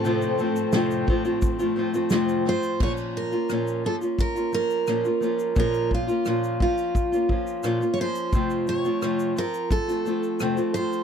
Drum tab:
CC |----------------|x---------------|----------------|----------------|
SH |xxxxxx-xxx-xxx-x|-x-xxx-xxxxxxxxx|xx-xxx-xxx-xxx-x|xxxxxxxxxxxxxxxx|
SD |----o-------o-o-|----r-------r---|----r-------r-r-|----r-------r-r-|
BD |------o-o-------|o-------o-------|o-o---o-o-o-----|o-------o-------|